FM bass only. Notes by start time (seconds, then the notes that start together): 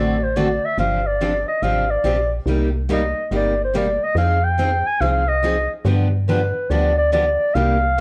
Already playing: A1
0.78 G1
1.62 G#1
2.04 A#1
2.46 C2
3.31 G1
4.15 F2
5.01 C2
5.85 G2
6.70 D2
7.55 C2